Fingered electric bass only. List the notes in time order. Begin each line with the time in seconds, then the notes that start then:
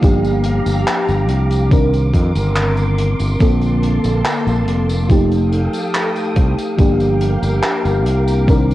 0.02 G1
0.67 G1
1.09 G1
1.29 C2
2.14 F2
2.36 G1
3.20 G1
3.40 A#1
4.05 A#1
4.47 A#1
4.67 F1
6.36 C2
6.78 G1
7.43 G1
7.85 G1
8.05 C2